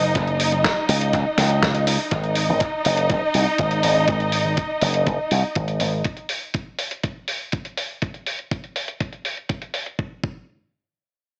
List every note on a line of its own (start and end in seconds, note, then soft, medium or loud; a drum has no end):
0.00 0.11 F#1 loud
0.00 2.10 D#4 medium
0.00 2.10 D#5 medium
0.15 0.49 F#1 medium
0.15 kick loud
0.15 closed hi-hat medium
0.27 closed hi-hat soft
0.40 open hi-hat loud
0.52 0.62 F#1 medium
0.52 closed hi-hat soft
0.64 kick loud
0.64 snare loud
0.64 closed hi-hat medium
0.89 1.09 C#2 medium
0.89 open hi-hat loud
1.01 closed hi-hat soft
1.13 1.24 C#2 medium
1.13 kick loud
1.13 closed hi-hat medium
1.38 1.96 C#2 medium
1.38 snare medium
1.38 open hi-hat loud
1.50 closed hi-hat soft
1.63 kick loud
1.63 snare loud
1.63 closed hi-hat medium
1.75 closed hi-hat soft
1.87 open hi-hat loud
2.11 2.45 G#1 medium
2.11 6.06 D#4 medium
2.11 6.06 D#5 medium
2.11 kick loud
2.11 closed hi-hat medium
2.24 closed hi-hat soft
2.35 open hi-hat loud
2.49 2.59 G#1 medium
2.60 kick loud
2.60 closed hi-hat medium
2.85 3.06 F#1 medium
2.85 open hi-hat loud
2.97 closed hi-hat soft
3.10 3.20 F#1 medium
3.10 kick loud
3.10 closed hi-hat medium
3.34 3.45 C2 medium
3.34 open hi-hat medium
3.46 muted slap bass stroke soft
3.58 3.80 G#1 medium
3.58 kick loud
3.58 closed hi-hat medium
3.71 closed hi-hat soft
3.83 4.05 G#1 medium
3.83 open hi-hat loud
4.08 4.42 G#1 medium
4.08 kick loud
4.08 closed hi-hat medium
4.20 closed hi-hat soft
4.32 open hi-hat medium
4.45 4.55 G#1 medium
4.57 kick loud
4.57 closed hi-hat medium
4.81 5.03 F#1 medium
4.81 open hi-hat medium
4.94 closed hi-hat soft
5.07 5.17 F#1 medium
5.07 kick loud
5.07 closed hi-hat medium
5.31 5.42 C2 medium
5.31 open hi-hat medium
5.44 muted slap bass stroke soft
5.55 5.77 G#1 medium
5.55 kick loud
5.55 closed hi-hat medium
5.68 closed hi-hat soft
5.80 6.01 G#1 medium
5.80 open hi-hat medium
6.04 kick loud
6.04 closed hi-hat medium
6.17 closed hi-hat soft
6.29 open hi-hat medium
6.54 kick loud
6.54 closed hi-hat medium
6.79 open hi-hat medium
6.91 closed hi-hat soft
7.03 kick loud
7.03 closed hi-hat medium
7.28 open hi-hat medium
7.52 kick loud
7.52 closed hi-hat medium
7.65 closed hi-hat soft
7.77 open hi-hat medium
8.02 kick loud
8.02 closed hi-hat medium
8.14 closed hi-hat soft
8.26 open hi-hat medium
8.39 closed hi-hat soft
8.51 kick loud
8.51 closed hi-hat medium
8.64 closed hi-hat soft
8.76 open hi-hat medium
8.88 closed hi-hat soft
9.00 kick loud
9.00 closed hi-hat medium
9.13 closed hi-hat soft
9.25 open hi-hat medium
9.37 closed hi-hat soft
9.49 kick loud
9.49 closed hi-hat medium
9.62 closed hi-hat medium
9.74 open hi-hat medium
9.86 closed hi-hat soft
9.99 kick loud
10.24 kick loud